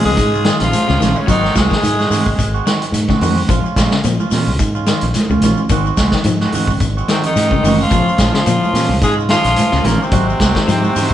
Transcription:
0.05 C#2 G#3 G#4, shekere
0.17 G#2, kick, closed hi-hat, high conga, shekere
0.34 C#4 F4, shekere
0.45 D#3 G#3 C#4 F4, snare, closed hi-hat, shekere
0.59 A#1 F3, snare, closed hi-hat, low conga, shekere
0.64 F4
0.73 closed hi-hat, high conga, shekere
0.88 C#2 C#3 C#4 F4, snare, shekere
1.00 A#1 D#3 C#4 F4, snare, closed hi-hat, high conga, low conga, shekere
1.16 C#3 C#4, shekere
1.27 G#1 D#3 F#3 G#3 C4 D#4 F#4, kick, closed hi-hat, shekere
1.43 G#3 C4 F#4, snare, shekere
1.55 C2 D#3 G#3 C4 F#4 G#4, kick, snare, closed hi-hat, high conga, shekere
1.70 D#3, kick, snare, shekere
1.83 G#2, closed hi-hat, high conga, shekere
1.99 G#3 C4 F#4, snare, high conga, shekere
2.10 G#2 D#3 G#3 C4 F#4, snare, open hi-hat, high conga, low conga, shekere
2.26 G#1, kick, shekere
2.39 G#1, kick, closed hi-hat, high conga, shekere
2.54 G#3 C4 F#4, shekere
2.66 D#3 G#3 C4 F#4, snare, closed hi-hat, shekere
2.82 closed hi-hat, shekere
2.92 G#2, closed hi-hat, high conga, shekere
3.09 C#3 G#3 C4 F#4, kick, snare, high conga, shekere
3.21 F2 D#3 G#3 C4 F#4, open hi-hat, high conga, low conga, shekere
3.37 shekere
3.48 A#1 F3 G#3 F4, muted clean electric guitar stroke, kick, closed hi-hat, high conga, shekere
3.64 C#4 F4, muted fingered electric bass stroke, shekere
3.76 A#1 G#3 C#4 F4, kick, snare, closed hi-hat, high conga, shekere
3.91 C#3, snare, shekere
4.03 A#2 F3, closed hi-hat, high conga, shekere
4.19 C#4 F4, high conga, shekere
4.31 A#2 G#3 C#4 F4, snare, open hi-hat, low conga, shekere
4.47 C#2, shekere
4.59 G#2, kick, closed hi-hat, high conga, shekere
4.75 C#4 F4, shekere
4.86 D#3 G#3 C#4 F4, snare, closed hi-hat, shekere
5.01 A#1, closed hi-hat, shekere
5.14 snare, closed hi-hat, high conga, shekere
5.30 C#2 C#3 C#4 F4, high conga, shekere
5.41 A#1 D#3 G#3 C#4 F4, closed hi-hat, high conga, low conga, shekere
5.57 shekere
5.69 G#1 D#3 G#3 C4 F#4, kick, closed hi-hat, high conga, shekere
5.86 G#3 C4 F#4, shekere
5.97 C2 G#3 C4 F#4, kick, snare, closed hi-hat, high conga, shekere
6.11 D#3, kick, snare, shekere
6.24 G#2 F3, closed hi-hat, high conga, shekere
6.40 G#3 C4 F#4, snare, high conga, shekere
6.52 G#2 D#3 G#3 C4 F#4, open hi-hat, high conga, low conga, shekere
6.67 G#1, kick, shekere
6.80 G#1, kick, closed hi-hat, high conga, shekere
6.97 G#3 C4 F#4, shekere
7.08 C3 D#3 G#3 C4 F#4, muted clean electric guitar stroke, snare, closed hi-hat, shekere
7.13 C3
7.23 D#3 D#4, closed hi-hat, low conga, shekere
7.36 G#2, snare, closed hi-hat, high conga, shekere
7.51 C#3 G#3 C4, kick, high conga, shekere
7.63 F#1 D#3 G#3 C4 F#4, open hi-hat, high conga, low conga, shekere
7.80 F3 F4, shekere
7.91 A#1 F3 G#3 C#4 F4, kick, closed hi-hat, high conga, shekere
8.08 C#4 F4, shekere
8.18 A#1 G#3 C#4 F4, kick, snare, closed hi-hat, high conga, shekere
8.33 C#3 F3 F4, snare, shekere
8.46 A#2 F3, closed hi-hat, high conga, shekere
8.62 C#4 F4, high conga, shekere
8.73 A#2 G#3 C#4 F4, snare, open hi-hat, high conga, low conga, shekere
8.89 C#2, shekere
9.02 G#2 G#3 G#4, kick, closed hi-hat, high conga, shekere
9.06 G#3
9.17 C#4 F4, shekere
9.29 D#3 F3 G#3 C#4 F4, snare, closed hi-hat, shekere
9.33 F3
9.44 A#1, snare, closed hi-hat, shekere
9.56 closed hi-hat, high conga, shekere
9.71 C#2 C#3 C#4 F4, snare, high conga, shekere
9.84 A#1 A#2 D#3 A#3 C#4 F4, closed hi-hat, high conga, low conga, shekere
10.01 C3 C4, shekere
10.11 G#1 D#3 F#3 G#3 C4 F#4, kick, closed hi-hat, high conga, shekere
10.28 G#3 C4 F#4, shekere
10.40 C2 D#3 G#3 C4 F#4, kick, snare, closed hi-hat, high conga, shekere
10.55 D#3, kick, snare, shekere
10.68 G#2 F3, snare, closed hi-hat, shekere
10.83 G#3 C4 F#4, high conga, shekere
10.95 G#2 D#3 G#3 C4 F#4, open hi-hat, low conga, shekere
11.10 G#1, kick

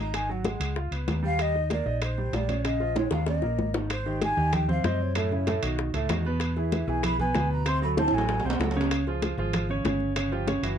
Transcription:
Already playing: G#1 D#4
0.00 D#5 A#5
0.14 D#3 D#4 G#5, high bongo, high conga, high timbale
0.29 F#3 F#4 F#5, high bongo, high conga
0.45 G#3 G#4, high bongo, high conga, high timbale, low timbale
0.60 C#2, high bongo, high conga, high timbale
0.76 F4 F5, high bongo, high conga
0.91 C#2 B3 B4, high conga, high timbale
1.07 D#2, high bongo, low bongo, high conga, high timbale, low timbale
1.23 G3 G4 F5, high bongo, high conga
1.39 D#5, high bongo, high conga, high timbale
1.54 D#4 D#5, high bongo, high conga
1.70 A#3 A#4 D5, high bongo, high conga, high timbale, low timbale
1.86 A#1 D#4 D#5, high bongo
2.02 C5, high bongo, high conga, high timbale
2.18 G3 G4, high conga
2.33 A#1 D5, high bongo, low bongo, high conga, high timbale, low timbale
2.48 C#4 C#5, high bongo, high conga, high timbale
2.64 C#3 C#4 D#5, high bongo, high conga, high timbale
2.80 F3 F4, high bongo, high conga
2.96 G#3 G#4 C#5, high bongo, high conga, high timbale
3.11 D#2 F5, high bongo, high conga, low timbale
3.26 C#4 C#5 D#5, high bongo, high conga, low timbale
3.42 A#1 A#3 A#4, low bongo, high conga
3.59 G#1, low bongo, high conga
3.74 D#3 D#4, low bongo, low timbale
3.90 C5, high bongo, high conga, high timbale
4.06 D#3 D#4 G4, high bongo, high conga
4.21 G#5, high bongo, high conga, high timbale
4.37 D#2 D#3 D#4 G4, high bongo, high conga
4.53 G5, high bongo, high conga, low conga, high timbale
4.68 C3 C4 C5 F5, high bongo, high conga, low conga
4.84 F#2 C3 C4 C5 D#5, high bongo, low bongo, high conga, high timbale
5.00 C#5, high conga
5.15 A2 A3 A4, high bongo, high conga, high timbale
5.31 C#3 C#4 E4, high bongo, high conga
5.46 A2 A3 A4, high bongo, high conga, high timbale
5.62 B1 D#3 D#4 F#4, high conga, high timbale
5.79 high bongo, high conga
5.94 C#2 A2 A3 A4, high bongo, high conga, high timbale
6.09 E2 D#3 D#4 F#4, high bongo, low bongo, high conga, high timbale, low timbale
6.25 B2 B3 B4, high bongo, high conga
6.40 high bongo, high conga, high timbale
6.56 E3 E4 G#4 E5, high bongo, high conga
6.72 high bongo, high conga, high timbale
6.87 B1 E3 E4 G#4 G#5, high bongo, high conga
7.03 B5, high bongo, high conga, low conga, high timbale
7.19 B2 B3 B4 G#5, high bongo, high conga, low conga
7.35 D2 B2 B3 B4, high bongo, low bongo, high conga, high timbale, low timbale
7.51 A#5, high conga
7.66 C3 C4 C5 C6, high bongo, high conga, high timbale
7.82 F#3 F#4 A4 B5, high bongo, high conga
7.97 C3 C4 C5 A5, high bongo, high conga, high timbale
8.08 high timbale
8.12 A1 F#3 F#4 A4 G#5, high conga
8.18 low timbale
8.29 high bongo, high conga, low timbale
8.40 low timbale
8.44 B1 C3 C4 C5 F#5, high bongo, high conga
8.50 low timbale
8.60 C#2 F#3 F#4 A4, high bongo, low bongo, high conga, low timbale
8.71 low timbale
8.76 C#3 C#4 C#5, high bongo, high conga
8.81 low timbale
8.91 high bongo, high conga, high timbale
9.07 F3 F4 G#4, high bongo, high conga
9.22 high bongo, high conga, high timbale
9.37 G#1 F3 F4 G#4, high bongo, high conga
9.53 high bongo, high conga, low conga, high timbale
9.69 C#3 C#4 C#5, high bongo, high conga
9.84 G1 C#3 C#4 C#5, high bongo, low bongo, high conga, high timbale
10.00 high conga
10.16 C#3 C#4 C#5, high bongo, high conga, high timbale
10.32 F3 F4 G4, high bongo, high conga
10.47 C#3 C#4 C#5, high bongo, high conga, high timbale
10.63 F#1 E3 E4 F#4, high conga, high timbale

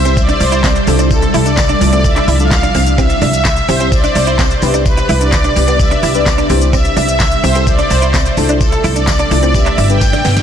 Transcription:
Already playing: C2 G3 G4 E5
0.05 G3 C4 E4 G4 C5, closed hi-hat, tambourine, shaker
0.17 D5, kick, tambourine, shaker
0.29 D4, closed hi-hat, shaker
0.40 C2 C5, muted clean electric guitar stroke, open hi-hat, tambourine, shaker
0.52 E4, closed hi-hat, shaker
0.64 C4, kick, snare, clap, tambourine, shaker
0.76 closed hi-hat, shaker
0.87 C2 C3 F3 A3 D4 E4 F4 A4, muted clean electric guitar stroke, open hi-hat, tambourine, shaker
0.99 D4, closed hi-hat, tambourine, shaker
1.11 A4, kick, tambourine, shaker
1.22 muted clean electric guitar stroke, closed hi-hat, shaker
1.34 C2 E4, open hi-hat, tambourine, shaker
1.46 D4 D5, closed hi-hat, tambourine, shaker
1.57 D5, kick, snare, clap, tambourine, shaker
1.69 D4, closed hi-hat, shaker
1.81 C2 A3 D4 E4 F4 A4, muted clean electric guitar stroke, open hi-hat, tambourine, shaker
1.93 A3 C4 D4 E4 F4 A4 D5, closed hi-hat, shaker
2.04 E5, muted clean electric guitar stroke, kick, tambourine, shaker
2.16 D4, clap, closed hi-hat, shaker
2.28 C2 E4, open hi-hat, tambourine, shaker
2.39 A3 D4 E4 F4 A4 F5, closed hi-hat, shaker
2.51 muted clean electric guitar stroke, kick, snare, clap, tambourine, shaker
2.63 D4, closed hi-hat, shaker
2.75 C2 C4, open hi-hat, tambourine, shaker
2.86 closed hi-hat, shaker
2.98 G3 C4 E4 G4 C5 E5, kick, tambourine, shaker
3.10 muted clean electric guitar stroke, closed hi-hat, shaker
3.22 C2 D4, open hi-hat, tambourine, shaker
3.33 E5, closed hi-hat, tambourine, shaker
3.45 muted clean electric guitar stroke, kick, snare, clap, tambourine, shaker
3.57 closed hi-hat, shaker
3.68 C2 G3 C4 E4 G4 C5, open hi-hat, tambourine, shaker
3.80 G3 C4 E4 G4 C5, closed hi-hat, shaker
3.92 D5, kick, tambourine, shaker
4.04 D4, closed hi-hat, tambourine, shaker
4.15 C2 C5, muted clean electric guitar stroke, open hi-hat, tambourine, shaker
4.27 E4, closed hi-hat, shaker
4.39 C4, kick, snare, clap, tambourine, shaker
4.51 closed hi-hat, shaker
4.62 C2 C3 G3 B3 D4 G4 B4, muted clean electric guitar stroke, open hi-hat, tambourine, shaker
4.74 D4, closed hi-hat, tambourine, shaker
4.86 B4, kick, tambourine, shaker
4.97 muted clean electric guitar stroke, closed hi-hat, shaker
5.09 C2 E4, open hi-hat, tambourine, shaker
5.21 D4 D5, closed hi-hat, shaker
5.32 D5, kick, snare, clap, tambourine, shaker
5.44 D4, closed hi-hat, shaker
5.56 C2 G3 B3 D4 G4 B4, muted clean electric guitar stroke, open hi-hat, tambourine, shaker
5.68 G3 B3 D4 G4 B4 D5, closed hi-hat, tambourine, shaker
5.80 E5, muted clean electric guitar stroke, kick, tambourine, shaker
5.91 D4, closed hi-hat, shaker
6.03 C2 E4, open hi-hat, tambourine, shaker
6.14 G3 B3 D4 G4 B4 D5, closed hi-hat, shaker
6.26 muted clean electric guitar stroke, kick, snare, clap, tambourine, shaker
6.38 D4, closed hi-hat, shaker
6.50 C2 G3 C4 E4 G4 C5 E5, open hi-hat, tambourine, shaker
6.61 closed hi-hat, tambourine, shaker
6.73 C4 E5, kick, tambourine, shaker
6.85 muted clean electric guitar stroke, closed hi-hat, shaker
6.97 C2 D4, open hi-hat, tambourine, shaker
7.08 E5, closed hi-hat, tambourine, shaker
7.20 muted clean electric guitar stroke, kick, snare, clap, tambourine, shaker
7.32 closed hi-hat, shaker
7.43 C2 G3 C4 E4 G4 C5, open hi-hat, tambourine, shaker
7.55 G3 C4 E4 G4 A4, closed hi-hat, tambourine, shaker
7.67 D5, kick, tambourine, shaker
7.79 D4, closed hi-hat, shaker
7.90 C2 C5, muted clean electric guitar stroke, open hi-hat, tambourine, shaker
8.02 E4, closed hi-hat, shaker
8.14 C4, kick, snare, clap, tambourine, shaker
8.26 closed hi-hat, shaker
8.37 C2 C3 F3 A3 D4 E4 F4 A4, muted clean electric guitar stroke, open hi-hat, tambourine, shaker
8.49 D4, closed hi-hat, shaker
8.61 A4, kick, tambourine, shaker
8.72 muted clean electric guitar stroke, closed hi-hat, shaker
8.84 C2 E4, open hi-hat, tambourine, shaker
8.96 D4 D5, closed hi-hat, tambourine, shaker
9.07 D5, kick, snare, clap, tambourine, shaker
9.19 D4, closed hi-hat, shaker
9.31 C2 A3 D4 E4 F4 A4, muted clean electric guitar stroke, open hi-hat, tambourine, shaker
9.43 A3 C4 D4 E4 F4 A4 D5, closed hi-hat, shaker
9.54 G3 B3 D4 G4 B4 E5, muted clean electric guitar stroke, kick, tambourine, shaker
9.66 D4, clap, closed hi-hat, shaker
9.78 G1 E4, open hi-hat, tambourine, shaker
9.90 G3 B3 D4 G4 B4 G5, closed hi-hat, shaker
10.01 muted clean electric guitar stroke, kick, snare, tambourine, shaker
10.13 D4, snare, closed hi-hat, shaker
10.25 G1 B3, snare, open hi-hat, tambourine, shaker
10.37 snare, closed hi-hat, tambourine, shaker

